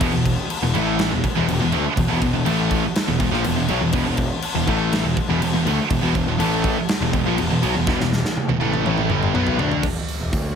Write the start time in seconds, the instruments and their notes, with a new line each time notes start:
0.00 picked electric bass E1, overdriven electric guitar E2 B2, kick, crash
0.13 picked electric bass E1, overdriven electric guitar E2 B2
0.26 kick, crash
0.50 crash
0.62 picked electric bass E1, overdriven electric guitar E2 B2
0.75 picked electric bass A1, overdriven electric guitar A2 E3 A3, crash
0.99 snare, crash
1.12 picked electric bass E1, overdriven electric guitar E2 B2
1.23 muted picked electric bass stroke, muted distorted electric guitar stroke, muted overdriven electric guitar stroke, kick, crash
1.37 picked electric bass E1, overdriven electric guitar E2 B2
1.48 picked electric bass E1, overdriven electric guitar E2 B2, crash
1.62 picked electric bass E1, overdriven electric guitar E2 B2
1.72 picked electric bass D2, overdriven electric guitar D3 A3, crash
1.84 muted distorted electric guitar stroke, muted overdriven electric guitar stroke, muted picked electric bass stroke
1.97 picked electric bass E1, overdriven electric guitar E2 B2, kick, crash
2.10 picked electric bass E1, overdriven electric guitar E2 B2
2.21 picked electric bass E1, overdriven electric guitar E2 B2, kick, crash
2.35 picked electric bass E1, overdriven electric guitar E2 B2
2.46 picked electric bass A1, overdriven electric guitar A2 E3 A3, crash
2.71 kick, crash
2.83 muted distorted electric guitar stroke, muted overdriven electric guitar stroke, muted picked electric bass stroke
2.96 snare, crash
3.07 picked electric bass E1, overdriven electric guitar E2 B2
3.19 picked electric bass E1, overdriven electric guitar E2 B2, kick, crash
3.31 picked electric bass A#1, overdriven electric guitar A#2 F3, snare
3.44 picked electric bass E1, overdriven electric guitar E2 B2, crash
3.56 picked electric bass E1, overdriven electric guitar E2 B2
3.68 picked electric bass B1, overdriven electric guitar B2 F#3, crash
3.81 picked electric bass E1, overdriven electric guitar E2 B2
3.93 picked electric bass E1, overdriven electric guitar E2 B2, kick, crash
4.05 picked electric bass E1, overdriven electric guitar E2 B2
4.17 kick, crash
4.42 crash
4.54 picked electric bass E1, overdriven electric guitar E2 B2
4.67 picked electric bass A1, overdriven electric guitar A2 E3 A3, kick, crash
4.93 snare, crash
5.04 picked electric bass E1, overdriven electric guitar E2 B2
5.17 muted overdriven electric guitar stroke, muted picked electric bass stroke, muted distorted electric guitar stroke, kick, crash
5.28 picked electric bass E1, overdriven electric guitar E2 B2
5.41 picked electric bass E1, overdriven electric guitar E2 B2, crash
5.53 picked electric bass E1, overdriven electric guitar E2 B2
5.65 picked electric bass D2, overdriven electric guitar D3 A3, crash
5.78 muted picked electric bass stroke, muted distorted electric guitar stroke, muted overdriven electric guitar stroke
5.90 picked electric bass E1, overdriven electric guitar E2 B2, kick, crash
6.03 picked electric bass E1, overdriven electric guitar E2 B2
6.14 picked electric bass E1, overdriven electric guitar E2 B2, kick, crash
6.27 picked electric bass E1, overdriven electric guitar E2 B2
6.38 picked electric bass A1, overdriven electric guitar A2 E3 A3, crash
6.64 kick, crash
6.76 muted picked electric bass stroke, muted overdriven electric guitar stroke, muted distorted electric guitar stroke
6.89 snare, crash
7.00 picked electric bass E1, overdriven electric guitar E2 B2
7.13 picked electric bass E1, overdriven electric guitar E2 B2, kick, crash
7.26 picked electric bass A#1, overdriven electric guitar A#2 F3
7.38 picked electric bass E1, overdriven electric guitar E2 B2, crash
7.49 picked electric bass E1, overdriven electric guitar E2 B2
7.62 picked electric bass B1, overdriven electric guitar B2 F#3, crash
7.74 picked electric bass E1, overdriven electric guitar E2 B2
7.87 picked electric bass E1, overdriven electric guitar E2 B2, kick, snare
7.99 picked electric bass E1, overdriven electric guitar E2 B2, snare
8.13 snare
8.25 snare
8.37 high tom
8.48 picked electric bass E1, overdriven electric guitar E2 B2, high tom
8.60 picked electric bass A1, overdriven electric guitar A2 E3 A3, high tom
8.74 mid tom
8.85 picked electric bass A1, overdriven electric guitar A2 E3 A3, mid tom
8.98 mid tom
9.09 picked electric bass G1, overdriven electric guitar G2 D3 G3, mid tom
9.23 mid tom
9.34 picked electric bass B1, overdriven electric guitar B2 F#3 B3, mid tom
9.47 floor tom
9.58 picked electric bass D2, overdriven electric guitar D3 A3 D4, floor tom
9.72 floor tom
9.83 picked electric bass E1, kick, crash
9.96 muted picked electric bass stroke
10.09 open hi-hat
10.21 picked electric bass E1
10.33 picked electric bass D2, kick, open hi-hat